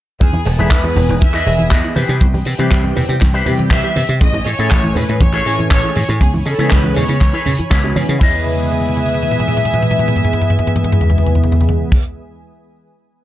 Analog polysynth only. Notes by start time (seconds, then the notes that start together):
0.20 E3 G#3 B3 D#4 G#4
0.58 E3 G#3 B3 G#4
1.08 E3 G#3 B3 D#4 G#4
1.45 E3 G#3 B3 G#4 E5
1.83 E3 G#3 B3 D#4 G#4
2.20 E3 G3 B3 C4 G4
2.58 E3 G3 C4 G4
3.08 E3 G3 B3 C4 G4
3.46 E3 G3 C4 G4
3.84 E3 G3 B3 C4 G4
4.21 E3 G#3 A3 C#4 G#4
4.58 E3 A3 C#4 G#5
5.08 E3 G#3 A3 C#4 G#4
5.45 E3 A3 C#4 G#5
5.83 E3 G#3 A3 C#4 G#4
6.21 E3 G#3 B3 C#4 G#4
6.58 E3 G#3 B3 C#4 G#4
7.08 E3 G#3 B3 C#4 G#4
7.70 E3 G#3 B3 C#4 F#4
7.96 E3 G#3 B3 C#4 G#4
8.08 E3 G#3 B3 C#4 G#4
8.20 E3 G#3 B3 G#4 B4